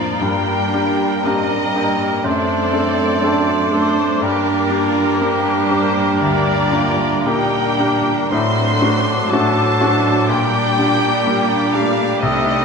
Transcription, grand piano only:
0.00 0.24 F2 soft
0.00 0.24 A#3 soft
0.00 0.24 D4 soft
0.00 0.24 F4 soft
0.21 0.72 G2 soft
0.74 1.21 D4 soft
0.74 1.21 G4 soft
1.25 1.71 A#3 soft
1.25 1.72 D4 soft
1.25 1.72 G4 soft
1.75 2.21 D4 soft
1.75 2.21 G4 soft
2.24 2.72 F#2 soft
2.73 3.19 D4 soft
2.73 3.19 A4 soft
3.23 3.69 C4 soft
3.23 3.69 D4 soft
3.23 3.69 A4 soft
3.72 4.18 D4 soft
3.72 4.18 A4 soft
4.21 4.70 G2 soft
4.71 5.16 D4 soft
4.71 5.17 G4 soft
5.21 5.66 A#3 soft
5.21 5.66 D4 soft
5.21 5.66 G4 soft
5.70 6.15 D4 soft
5.70 6.16 G4 soft
6.21 6.71 D2 soft
6.72 7.21 D4 soft
6.72 7.21 G4 soft
7.26 7.75 A#3 soft
7.26 7.75 D4 soft
7.26 7.76 G4 soft
7.79 8.28 D4 soft
7.79 8.28 G4 soft
8.32 8.80 A2 medium
8.81 9.26 D4 soft
8.81 9.27 F#4 soft
9.32 9.76 A3 soft
9.32 9.77 D4 soft
9.32 9.77 F#4 soft
9.80 10.25 D4 soft
9.80 10.26 F#4 soft
10.29 10.76 A#2 medium
10.78 11.22 D4 soft
10.78 11.22 G4 soft
11.26 11.71 G3 soft
11.26 11.71 D4 soft
11.26 11.71 G4 soft
11.75 12.19 D4 soft
11.75 12.19 G4 soft
12.23 12.65 C2 medium

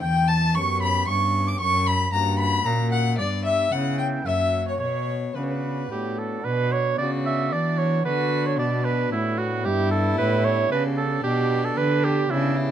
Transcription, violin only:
0.02 0.29 G5 loud
0.28 0.57 A5 loud
0.55 0.81 C#6 loud
0.82 1.07 B5 loud
1.08 1.49 C#6 loud
1.48 1.60 D6 loud
1.60 1.88 C#6 loud
1.87 2.12 B5 loud
2.13 2.38 A#5 loud
2.39 2.67 B5 loud
2.66 2.91 A#5 loud
2.92 3.18 F#5 loud
3.18 3.44 D5 loud
3.45 3.74 E5 loud
3.72 3.98 F#5 loud
3.99 4.07 G5 loud
4.26 4.66 E5 loud
4.68 4.80 C#5 medium
4.80 5.37 C#5 loud
5.36 5.45 B4 medium
5.43 5.52 C#5 medium
5.51 6.19 B4 medium
6.99 7.54 F#4 medium
7.52 8.05 D4 medium
8.05 8.58 F#4 loud
8.59 9.15 D4 medium
9.13 9.65 B3 medium
9.66 10.74 E4 loud
10.72 12.29 D4 medium
12.30 12.58 D4 loud
12.56 12.71 E4 loud

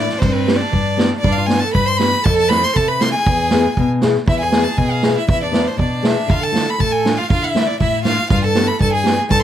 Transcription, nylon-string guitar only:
0.22 0.60 G2 medium
0.47 0.60 B3 medium
0.47 0.60 D4 medium
0.47 0.60 G4 medium
0.71 1.10 G2 medium
0.97 1.11 B3 medium
0.97 1.11 D4 medium
0.97 1.11 G4 medium
1.23 1.61 G2 medium
1.47 1.61 B3 medium
1.47 1.61 D4 medium
1.47 1.62 F#4 medium
1.74 2.12 G2 medium
1.99 2.12 B3 medium
1.99 2.13 D4 medium
1.99 2.13 G4 medium
2.25 2.63 F2 medium
2.50 2.63 C4 medium
2.50 2.63 F4 medium
2.50 2.63 A4 medium
2.76 3.14 C3 medium
3.01 3.14 C4 medium
3.01 3.14 F4 medium
3.01 3.14 A4 medium
3.27 3.65 E2 medium
3.52 3.65 B3 medium
3.52 3.65 E4 medium
3.52 3.65 G#4 medium
3.79 4.16 B2 medium
4.02 4.15 B3 medium
4.02 4.15 E4 medium
4.02 4.15 G#4 loud
4.26 4.65 E2 medium
4.51 4.65 B3 medium
4.51 4.65 E4 medium
4.51 4.65 G#4 medium
4.77 5.15 B2 medium
5.03 5.16 B3 medium
5.03 5.16 E4 medium
5.03 5.16 G#4 medium
5.27 5.65 E2 medium
5.52 5.65 B3 medium
5.52 5.66 E4 medium
5.52 5.66 B4 medium
5.77 6.15 B2 medium
6.03 6.16 B3 medium
6.03 6.16 E4 medium
6.03 6.16 G#4 medium
6.28 6.66 D3 medium
6.52 6.66 A3 medium
6.52 6.66 D4 medium
6.52 6.66 F4 medium
6.78 7.16 A2 medium
7.05 7.17 A3 medium
7.05 7.17 D4 medium
7.05 7.17 F4 medium
7.30 7.67 D3 medium
7.55 7.67 A3 medium
7.55 7.67 D4 medium
7.55 7.67 E4 medium
7.80 8.17 A2 medium
8.05 8.17 A3 medium
8.05 8.17 D4 medium
8.05 8.17 F4 medium
8.31 8.68 G2 medium
8.55 8.67 B3 medium
8.55 8.67 D4 medium
8.55 8.67 G4 medium
8.79 9.17 G2 medium
9.03 9.17 B3 medium
9.03 9.17 D4 medium
9.03 9.17 G4 medium
9.29 9.43 G2 medium

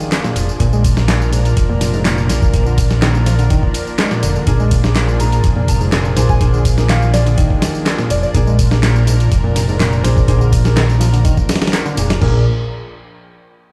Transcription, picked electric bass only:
0.00 0.11 D#3 medium
0.24 0.36 A#2 medium
0.60 0.66 A#2 medium
0.73 0.83 G#3 medium
1.08 1.32 A#2 medium
1.33 1.39 G#2 medium
1.70 1.93 A#2 medium
1.94 2.03 G#2 medium
2.05 2.28 A#2 medium
2.30 2.65 A#2 medium
2.66 2.77 D3 medium
3.02 3.08 D#3 medium
3.26 3.33 F3 medium
3.39 3.45 D3 medium
3.50 3.62 D#3 medium
3.99 4.11 G#3 medium
4.11 4.22 A#2 medium
4.23 4.33 D3 loud
4.36 4.45 D3 medium
4.47 4.54 A#2 medium
4.60 4.70 G#3 medium
4.96 5.19 A#2 medium
5.20 5.26 G#2 medium
5.56 5.80 A#2 medium
5.81 5.90 G#2 medium
5.92 6.15 A#2 medium
6.16 6.52 A#2 medium
6.53 6.64 D3 medium
6.89 6.96 D#3 medium
7.14 7.20 F3 medium
7.26 7.32 D3 medium
7.38 7.85 D#3 medium
7.99 8.10 A#2 medium
8.34 8.41 A#2 medium
8.47 8.57 G#3 medium
8.83 9.06 A#2 medium
9.07 9.13 G#2 medium
9.44 9.67 A#2 medium
9.68 9.78 G#2 medium
9.79 10.03 A#2 medium
10.04 10.39 A#2 medium
10.41 10.52 D3 medium
10.76 10.83 D#3 medium
11.00 11.07 F3 medium
11.13 11.19 D3 medium
11.24 11.36 D#3 medium
11.85 11.95 D3 medium
11.97 12.08 A#2 medium
12.21 12.44 A#2 medium

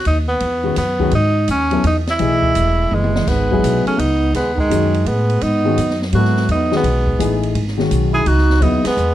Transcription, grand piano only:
0.63 0.75 D#3 medium
0.63 0.76 G#3 medium
0.63 0.76 C#4 medium
0.63 0.77 F#4 medium
1.00 1.11 D#3 medium
1.00 1.12 G#3 medium
1.00 1.12 C#4 medium
1.00 1.12 F#4 medium
1.71 1.83 F#3 medium
1.71 1.83 B3 medium
1.71 1.83 E4 medium
1.71 1.84 A4 medium
2.19 3.19 E3 medium
2.19 3.20 A3 medium
2.19 3.20 G#4 medium
2.19 3.20 D#5 medium
3.51 3.96 F#3 medium
3.51 3.97 B3 medium
3.51 3.97 E4 medium
3.51 3.97 G#4 medium
4.70 4.91 D#3 medium
4.70 4.92 G#3 medium
4.70 4.92 C#4 medium
4.70 4.92 F#4 medium
5.65 5.76 D#3 medium
5.65 5.76 G#3 medium
5.65 5.77 C#4 medium
5.65 5.77 F#4 medium
6.13 6.67 F#3 medium
6.13 6.68 B3 medium
6.13 6.68 E4 medium
6.13 6.68 A4 medium
6.72 6.83 D#3 medium
6.72 6.83 G#3 medium
6.72 6.83 C#4 medium
6.72 6.84 F#4 medium
7.19 7.55 E3 medium
7.19 7.55 A3 medium
7.19 7.55 D#4 medium
7.19 7.56 G#4 medium
7.77 8.23 D#3 medium
7.77 8.24 G#3 medium
7.77 8.24 C#4 medium
7.77 8.25 F#4 medium
8.61 8.82 C#3 medium
8.61 8.83 F#3 medium
8.61 8.83 B3 medium
8.61 8.84 E4 medium

